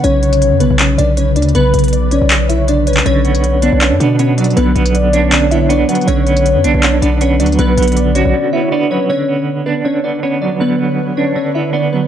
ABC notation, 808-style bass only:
X:1
M:4/4
L:1/16
Q:1/4=159
K:Bm
V:1 name="808-style bass" clef=bass
B,,,4- B,,, F,, B,,, B,,,3 B,,,4 D,,2 | B,,,2 B,,,4- B,,, B,,,8- B,,, | B,,,6- B,,, B,,,2 F,, B,,6 | B,,,2 B,,,12 z2 |
B,,,4- B,,, F,, B,,, B,,,3 B,,,4 D,,2 | B,,,2 B,,,4- B,,, B,,, z8 | z16 | z16 |]